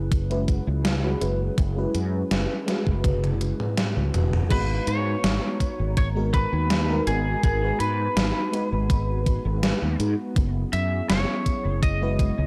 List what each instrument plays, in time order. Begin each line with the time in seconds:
Already playing: fretless electric bass F#1, ambient pad F#3 C#4 E4 G#4 B4
0.12 kick, closed hi-hat
0.30 fm electric piano G#3 C#4 E4 F#4 B4, closed hi-hat
0.48 kick, closed hi-hat
0.67 fretless electric bass C#2
0.85 snare, closed hi-hat
1.03 fm electric piano G#3 C#4 E4 F#4 B4
1.20 fretless electric bass F#1, fm electric piano G#3 C#4 E4 F#4 B4, closed hi-hat
1.58 fretless electric bass F#1, kick, closed hi-hat
1.75 fm electric piano G#3 C#4 E4 F#4 B4
1.94 fretless electric bass F#2, closed hi-hat
2.31 fretless electric bass F#1, snare, closed hi-hat
2.66 fm electric piano G#3 C#4 E4 F#4 B4, snare, closed hi-hat
2.87 fretless electric bass F#1, kick
3.04 kick, closed hi-hat, high tom
3.24 closed hi-hat, high tom
3.41 closed hi-hat
3.60 mid tom
3.77 snare, closed hi-hat, mid tom
3.96 fretless electric bass C#2
4.14 fretless electric bass E1, closed hi-hat, mid tom
4.33 mid tom
4.49 fretless electric bass G#1, fm electric piano G#3 B3 D#4 F#4 B4, ambient pad G#3 B3 D#4 F#4 A#5, lead electric guitar B4, kick, closed hi-hat, crash
4.87 fretless electric bass G#2, lead electric guitar C#5, closed hi-hat
5.24 fretless electric bass G#1, snare, closed hi-hat
5.60 kick, closed hi-hat
5.79 fretless electric bass G#1
5.97 lead electric guitar C#5, kick, closed hi-hat
6.15 fm electric piano G#3 B3 D#4 F#4 A#4
6.34 lead electric guitar B4, kick, closed hi-hat
6.52 fretless electric bass D#2
6.70 snare, closed hi-hat
6.89 fm electric piano G#3 B3 D#4 F#4 A#4
7.06 fretless electric bass G#1, fm electric piano G#3 B3 D#4 F#4 A#4, lead electric guitar G#4, closed hi-hat
7.43 fretless electric bass G#1, lead electric guitar G#4, kick, closed hi-hat
7.61 fm electric piano G#3 B3 D#4 F#4 B4
7.80 fretless electric bass G#2, lead electric guitar B4, closed hi-hat
8.16 fretless electric bass G#1, snare, closed hi-hat
8.52 fm electric piano G#3 B3 D#4 F#4 B4, closed hi-hat
8.72 fretless electric bass G#1
8.90 kick, closed hi-hat
9.26 kick, closed hi-hat
9.45 fretless electric bass G#1
9.63 snare, closed hi-hat
9.82 fretless electric bass D#2
9.99 fretless electric bass G#2, closed hi-hat
10.36 fretless electric bass F#1, ambient pad F#3 C#4 E4 G#4, kick, closed hi-hat
10.73 fretless electric bass F#2, lead electric guitar E5, closed hi-hat
11.09 fretless electric bass F#1, lead electric guitar C#5, snare, closed hi-hat
11.46 kick, closed hi-hat
11.65 fretless electric bass F#1
11.83 lead electric guitar D#5, kick, closed hi-hat
12.01 fm electric piano G#3 C#4 E4 F#4 B4
12.19 kick, closed hi-hat
12.38 fretless electric bass C#2